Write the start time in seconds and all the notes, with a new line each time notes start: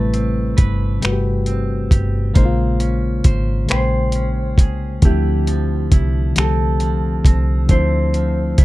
Already playing: A1 C3 G3 A3 C4 E4 B4
0.14 C4, closed hi-hat
0.57 G1 B4, kick, closed hi-hat
1.00 C3 G3 A3 G4 B4, closed hi-hat
1.04 G1 F#4, finger snap
1.12 G4
1.46 C4, closed hi-hat
1.91 G1 G4, kick, closed hi-hat
2.33 A#1 C#3 G#3 A#3 C5, kick, closed hi-hat
2.38 D#4
2.45 F4
2.80 C#4, closed hi-hat
3.24 G#1 C5, kick, closed hi-hat
3.66 C#3 G#3 A#3 G#4, closed hi-hat
3.70 A#1 C5 G5, finger snap
4.12 C#4, closed hi-hat
4.58 C2 G#4, kick, closed hi-hat
5.01 D2 D3 E3 A3, kick, closed hi-hat
5.05 F3 C4 E4 G4
5.47 F3, closed hi-hat
5.92 C2 E4, kick, closed hi-hat
6.33 D3 F3 A3, closed hi-hat
6.37 C2 C4 G4 A4, finger snap
6.80 F3, closed hi-hat
7.25 C2 C4, kick, closed hi-hat
7.67 D2 D3 F3 A3 E4 C5, kick, closed hi-hat
7.71 C4 E4
8.14 F3, closed hi-hat
8.58 C2 E4, kick, closed hi-hat